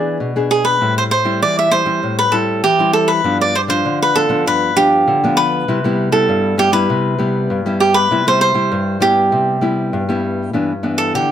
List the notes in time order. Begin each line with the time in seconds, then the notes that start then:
Already playing: E3 B3 D4 G#4 D5
0.20 B2
0.36 B3 D4 G#4
0.51 G#4
0.65 B4
0.81 A2 G3 C4 E4
0.98 C5
1.11 C5
1.25 G3 C4 E4
1.42 E3 D5
1.59 E5
1.71 G3 C4 E4 C5
1.85 G3 C4 E4
2.03 A2
2.19 B4
2.32 G3 C4 E4 A4
2.64 E3 G4
2.79 G3 C4 E4
2.93 A4
3.08 B4
3.24 G2 F3 B3 D4
3.41 D5
3.55 C5
3.68 F3 D4 C5
3.85 D3
4.02 B4
4.15 F3 B3 D4 A4
4.29 F3 B3 D4
4.46 G2 B4
4.76 F3 B3 D4 G4
5.07 D3
5.24 F3 B3 D4
5.37 B4
5.68 C3 G3 B3 E4
5.84 G3 B3 E4
6.12 G3 B3 E4 A4
6.29 G2
6.58 G3 B3 E4 G4
6.72 G3 B3 E4 B4
6.90 C3
7.19 G3 B3 E4
7.50 G2
7.66 G3 B3 E4
7.80 G4
7.94 B4
8.11 C3 G3 B3 E4
8.27 G3 B3 E4 C5
8.41 C5
8.54 G3 E4
8.72 G2
9.00 G3 B3 E4 G4
9.32 C3
9.61 G3 B3 E4
9.93 G2
10.09 G3 B3 E4
10.53 G2 E3 B3 D4
10.83 E3 B3 D4
10.98 A4
11.15 D3 G4